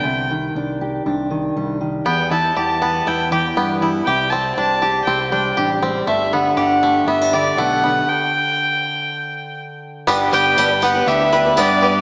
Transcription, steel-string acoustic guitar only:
\new Staff \with { instrumentName = "Steel-string acoustic guitar" } { \clef bass \time 4/4 \key g \major \tempo 4 = 120 << { r4 d'8 g'8 d'4 g4~ | g4 b8 g'8 b4 g4~ | g8 r8 g'8 g'8 g'4 d'4 | r4 d'8 g'8 b16 d'8. b4 |
r1 | r1 | } \\ { <c d>8 ees2 ees4 ees8 | e,8 e2 e4 e8 | c8 g2 g4 g8 | g,8 d2 d4 d8~ |
d1 | r1 | } >> }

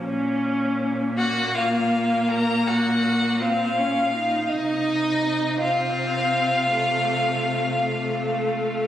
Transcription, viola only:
\new Staff \with { instrumentName = "Viola" } { \time 12/8 \key bes \minor \tempo 4. = 54 des'4. bes2. c'8 des'8 ees'8~ | ees'4. c'4. a4. a4. | }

